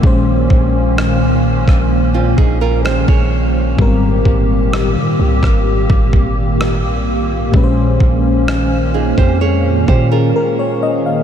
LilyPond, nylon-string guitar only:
\new Staff \with { instrumentName = "Nylon-string guitar" } { \time 4/4 \key bes \dorian \tempo 4 = 64 r2 r16 <c' f'>16 <ees' aes'>16 <f' bes'>16 <g' c''>16 <aes' des''>8. | r1 | r4. <ees' aes'>16 <g' c''>16 <aes' des''>8 <g' c''>16 <f' bes'>4~ <f' bes'>16 | }